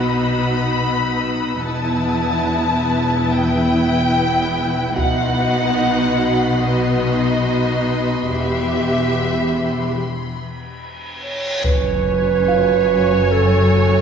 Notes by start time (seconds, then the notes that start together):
Already playing: B1 B2 B3 D#4 B4 F#5 B5 D#6 E6
1.62 E1 E2 B3 E4 B4 E5 A5
2.35 D#6
3.31 G5
4.96 B1 B2 B3 D#4 F#4 D#5 F#5 B5 C6, taiko
6.63 B3 D#4 D#5
8.30 E1 E2 B3 G4 E5, reverse cymbal
11.22 C#5
11.64 F#1 F#2 F#3 B4 C#5 G#5, taiko, impact
12.48 F4 F5
13.32 A4